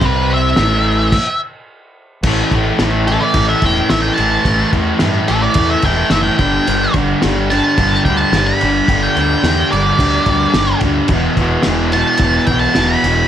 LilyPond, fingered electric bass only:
\new Staff \with { instrumentName = "Fingered electric bass" } { \clef bass \time 4/4 \key a \dorian \tempo 4 = 108 c,4 a,,4 r2 | a,,8 a,,8 a,,4 a,,8 e,,8 a,,8 a,,8 | a,,8 e,8 g,8 a,,8 e,8 e,,8 fis,,8 g,,8 | g,,8 g,,8 g,,4 g,,8 d,8 g,,8 g,,8 |
g,,8 d,8 e,8 g,,8 d,8 d,8 g,,8 d,8 | e,,8 e,,8 e,,4 e,,8 b,,8 e,,8 e,,8 | }